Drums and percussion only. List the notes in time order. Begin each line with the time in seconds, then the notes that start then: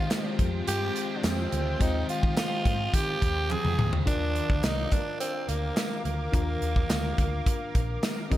0.11 snare, clap, closed hi-hat, tambourine
0.39 kick, closed hi-hat
0.68 closed hi-hat
0.96 closed hi-hat
1.24 snare, clap, closed hi-hat, tambourine
1.52 closed hi-hat
1.81 kick, closed hi-hat
2.09 closed hi-hat
2.23 kick
2.37 snare, clap, closed hi-hat, tambourine
2.65 kick, closed hi-hat
2.94 kick, closed hi-hat
3.22 kick, closed hi-hat
3.50 clap, high tom
3.65 mid tom
3.79 mid tom
3.93 floor tom
4.07 kick, closed hi-hat
4.36 closed hi-hat
4.50 kick
4.64 snare, clap, closed hi-hat, tambourine
4.92 kick, clap, closed hi-hat
5.20 closed hi-hat
5.49 closed hi-hat
5.77 snare, clap, closed hi-hat, tambourine
6.05 closed hi-hat
6.33 kick, closed hi-hat
6.62 closed hi-hat
6.76 kick
6.90 snare, clap, closed hi-hat, tambourine
7.18 kick, closed hi-hat
7.46 kick, closed hi-hat
7.75 kick, closed hi-hat
8.03 snare, clap, closed hi-hat, tambourine
8.32 kick, closed hi-hat